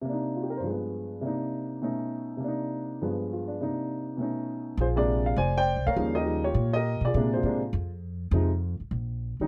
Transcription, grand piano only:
0.01 C3 A#3
0.09 D4 D#4
0.36 F4
0.43 G4
0.50 A#4
0.57 G2 C5
0.63 F3 G#3
0.70 B3
1.21 C3 A#3 D4
1.27 D#4
1.82 B2 A3 C#4 D#4
2.37 C3 A#3
2.44 D4
2.48 D#4
3.01 G2 F3 G#3 B3
3.33 F4
3.48 D4
3.61 C3 A#3 D4 D#4
4.17 B2 A3 C#4
4.22 D#4
4.80 F4 G#4 C5
4.96 C3 G#3 A#3 D4 F4 G#4 D5
5.26 F5
5.38 C5 D5 G#5
5.58 C5 D5 G5
5.87 A#4 C#5 F5
5.96 C#3 F3 G3 D#4
6.15 G4 A#4 D#5
6.25 C#3 F3 G3 D#4
6.44 F4 G4 C#5
6.73 G4 A#4 D#5
7.05 F4 G#4 D5
7.16 C3 G#3 A#3 D4
7.33 F4 G#4 C5
7.45 C3 G#3 A#3 D4
8.33 C3 F3 G#3 D#4
9.41 D#3 G3 C#4 D#4

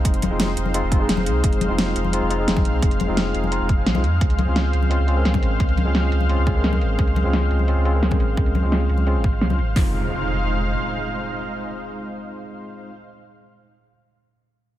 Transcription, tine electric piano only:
Already playing: G#3 C4 D#4 G#4
0.30 G#3 C4 D#4 F4
0.74 G#3 C4 D#4 F4
0.91 G#3 C4 D#4 F4
0.99 G#3 C4 D#4 G#4
1.69 G#3 C4 D#4 F4
2.12 G#3 C4 D#4 F4
2.30 G#3 C4 D#4 F4
2.38 G#3 C4 D#4 G#4
3.07 G#3 C4 D#4 F4
3.51 G#3 C4 D#4 F4
3.95 G#3 C4 D#4 F4
4.46 G#3 C4 C#4 F4
4.90 G#3 C4 C#4 F4
5.07 G#3 C4 C#4 F4
5.15 G#3 C4 C#4 A#4
5.85 G#3 C4 C#4 F4
6.29 G#3 C4 C#4 F4
6.46 G#3 C4 C#4 F4
6.54 G#3 C4 C#4 A#4
7.24 G#3 C4 C#4 F4
7.67 G#3 C4 C#4 F4
7.85 G#3 C4 C#4 F4
7.93 G#3 C4 C#4 A#4
8.62 G#3 C4 C#4 F4
9.06 G#3 C4 C#4 F4
9.50 G#3 C4 C#4 F4
9.74 G#3 C4 D#4 F4

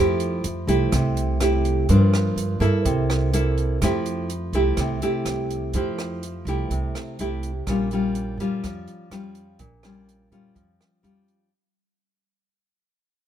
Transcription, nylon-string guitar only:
Already playing: F3 A3 E4 G4
0.68 A3 E4 G4
0.92 C3
1.40 A3 E4 G4
1.89 G2 F3 A#3 D4
2.60 A#3 E4 A4
2.85 C3
3.33 A#3 E4 A4
3.83 F3 A3 E4 G4
4.54 A3 E4 G4
4.80 C3
5.02 A3 E4 G4
5.75 F3 A3 E4 G4
6.48 A3 E4 G4
6.72 C3
7.20 A3 E4 G4
7.68 A#2 G3 C#4 F4
7.93 G3 C#4 F4
8.40 G3 C#4 F4
8.65 F3
9.12 G3 C#4 F4
9.59 A#2
9.84 G3 C#4 F4
10.32 G3 C#4 F4
10.55 F3
11.03 G3 C#4 F4

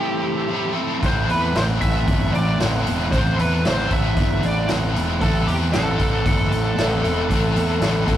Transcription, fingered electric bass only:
1.03 A1
1.28 E2
1.55 A1
1.82 A1
2.08 G1
2.34 A1
2.59 A1
2.87 E1
3.12 A1
3.38 E2
3.65 A1
3.91 A1
4.17 G1
4.44 A1
4.70 A1
4.96 E1
5.22 A1
5.47 E2
5.74 A1
6.00 A1
6.25 G1
6.51 A1
6.77 A1
7.04 E1
7.30 A1
7.55 E2
7.80 A1
8.08 A1

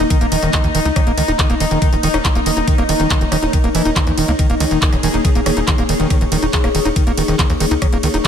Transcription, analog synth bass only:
0.21 D#1
0.32 D#1
0.43 D#1
0.64 D#2
0.75 D#1
0.85 C#2
1.07 D#1
1.18 C#2
1.28 D#1
1.50 D#1
1.60 D#1
1.71 D#1
1.93 D#1
2.03 D#1
2.14 D#1
2.35 D#1
2.46 D#1
2.57 D#1
2.78 D#1
2.89 D#1
3.00 D#1
3.21 D#1
3.32 D#1
3.43 D#1
3.64 D#1
3.75 D#1
3.85 D#1
4.07 D#2
4.18 D#1
4.28 C#2
4.50 D#1
4.60 C#2
4.71 D#1
4.93 D#1
5.03 D#1
5.14 D#1
5.35 D#1
5.46 D#1
5.57 D#1
5.78 D#1
5.89 D#1
6.00 D#1
6.21 D#1
6.32 D#1
6.42 D#1
6.64 D#1
6.75 D#1
6.85 D#1
7.07 D#1
7.17 D#1
7.28 D#1
7.50 D#2
7.60 D#1
7.71 C#2
7.92 D#1
8.03 C#2
8.14 D#1

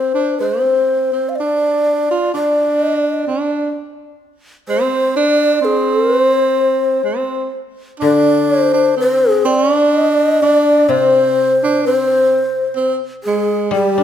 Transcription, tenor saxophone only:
Already playing: C4
0.14 D4
0.41 G#3
0.64 C4
1.12 C4
1.40 D4
2.11 F4
2.34 D4
3.27 D4
4.69 C4
5.16 D4
5.61 C4
7.04 C4
8.00 D4
8.73 D4
8.97 C4
9.45 C4
9.62 C#4
9.73 D4
10.42 D4
10.89 C4
11.64 D4
11.86 C4
12.76 C4
13.27 G#3
13.74 G3

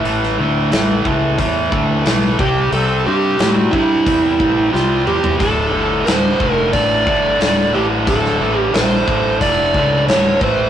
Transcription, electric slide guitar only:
2.40 G4
2.74 A4
3.07 G4
3.55 F#4
3.71 E4
4.74 F4
5.07 G4
5.39 A4
6.05 C5
6.53 A#4
6.73 D5
7.75 G4
8.08 A4
8.60 G4
8.74 C5
9.42 D5
10.09 C#5
10.44 C5

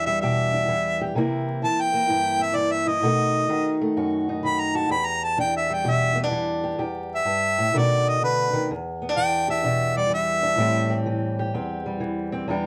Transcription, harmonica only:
0.06 E5
0.21 E5
1.64 A5
1.81 G5
2.42 E5
2.56 D5
2.72 E5
2.88 D#5
4.45 B5
4.60 A#5
4.76 A5
4.91 B5
5.06 A#5
5.24 A5
5.40 G5
5.57 E5
5.74 G5
5.90 E5
7.15 E5
7.78 D5
8.09 D#5
8.24 B4
9.17 G5
9.50 E5
9.97 D5
10.14 E5

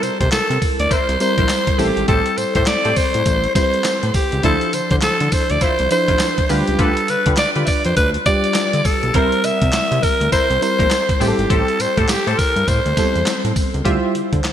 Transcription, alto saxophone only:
0.03 C5
0.20 C5
0.32 A4
0.80 D5
0.92 C5
1.21 C5
1.79 G4
2.09 A4
2.38 C5
2.56 C5
2.67 D5
2.97 C5
3.56 C5
4.15 G4
4.45 A4
4.74 C5
4.91 C5
5.03 A4
5.33 C5
5.51 D5
5.63 C5
5.92 C5
6.51 G4
6.80 A4
7.10 B4
7.38 D5
7.65 D5 E5
7.85 C5
7.97 B4
8.26 D5
8.86 A4
9.16 A#4
9.45 E5
10.03 A#4
10.32 C5
10.63 C5
11.22 G4
11.51 A4
11.81 C5
11.98 A4
12.10 G4
12.28 A4
12.38 A#4
12.68 C5

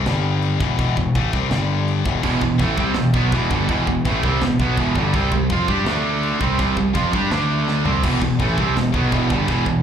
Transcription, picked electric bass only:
0.06 G1
0.60 E1
0.79 E1
0.97 E1
1.15 A1
1.33 C2
1.49 G1
2.06 E1
2.24 E1
2.42 E1
2.60 A1
2.78 C2
2.94 E1
3.14 B1
3.32 E1
3.51 G1
3.69 E1
3.88 E1
4.05 A1
4.24 C2
4.41 E1
4.59 B1
4.77 E1
4.95 G1
5.14 C2
5.32 C2
5.49 F2
5.68 G2
5.85 D2
6.41 C2
6.59 C2
6.77 C2
6.95 F2
7.13 G2
7.32 D2
7.85 C2
8.03 E1
8.22 E1
8.39 A1
8.58 C2
8.75 E1
8.94 B1
9.12 E1
9.31 G1
9.48 E1
9.66 E1

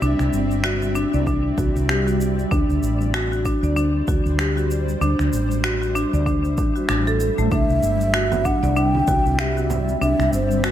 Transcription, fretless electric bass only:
0.02 C2
0.20 C2
0.34 G1
1.14 C2
1.58 C2
1.76 C2
2.52 D2
2.69 D2
2.82 A1
3.63 D2
4.08 D2
4.26 D2
5.01 D2
5.20 D2
5.33 A1
6.13 D2
6.58 A1
6.89 A1
7.38 A1
7.52 C2
7.70 C2
7.82 G1
8.63 C2
9.08 C2
9.26 C2
10.01 C2
10.19 C2
10.33 G1

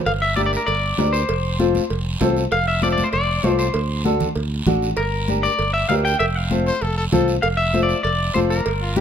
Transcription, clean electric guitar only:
0.06 F5
0.22 E5
0.36 D5
0.46 D5
0.57 A#4
0.66 D5
1.13 C5
2.52 F5
2.68 E5
2.83 D5
2.92 D5
3.04 C5
3.13 D5
3.59 C5
4.97 A#4
5.43 D5
5.74 E5
5.89 F5
6.05 G5
6.19 E5
6.35 F5
7.42 F5
7.57 E5
7.83 D5
8.03 D5
8.34 C5
8.50 A#4

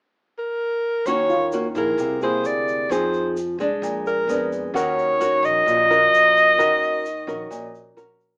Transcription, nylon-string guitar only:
1.07 D#3 A#3 C#4 F#4
1.53 A#3 C#4 F#4
1.76 A#3 E4 G#4
2.00 C3
2.22 A#3 E4 G#4
2.91 F3 C4 D#4 G#4
3.60 G#3 D4
3.83 A#2
4.29 G#3 B3 D4
4.74 D#3 C#4 F#4 A#4
5.20 C#4 F#4 A#4
5.67 A#2
5.90 C#4 F#4 A#4
6.58 D#3 C#4 F#4 A#4
7.27 C#4 F#4 A#4
7.51 A#2
7.96 C#4 F#4 A#4

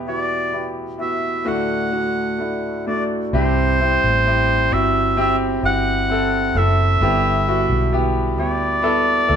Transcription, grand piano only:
Already playing: E2 B2 B3 E4 G4
0.07 B3 E4 F#4
0.53 B3 E4 G4
0.98 B3 E4 F#4
1.45 D2 A2 A3 D4 F#4
1.91 A3 D4 F#4
2.38 A3 D4 E4
2.87 A3 D4 F#4
3.33 G2 C4 E4 G4
3.80 C4 E4 G4
4.27 C4 E4 G4
4.72 C4 E4 F#4
5.17 C4 E4 G4
5.62 C4 E4 G4
6.09 C4 E4 A4
6.55 C4 E4 A4
7.01 G2 D3 B3 E4 G4
7.48 B3 E4 F#4
7.92 B3 E4 G4
8.38 B3 E4 G4
8.82 B3 E4 A4
9.27 B3 E4 A4

